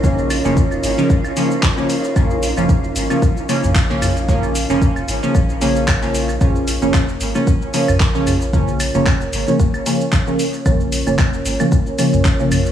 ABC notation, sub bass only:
X:1
M:4/4
L:1/16
Q:"Swing 16ths" 1/4=113
K:Bbm
V:1 name="Sub bass" clef=bass
B,,,3 F,,,3 A,,, z8 z | B,,,3 F,,,3 A,,, z4 B,,,4- B,,,- | B,,,3 F,,,3 A,,, z B,,,8 | B,,,3 F,,,3 A,,, z4 B,,,4- B,,,- |
B,,,3 F,,,3 A,,, z8 z | B,,,3 F,,,3 A,,, z4 B,,,4- B,,, |]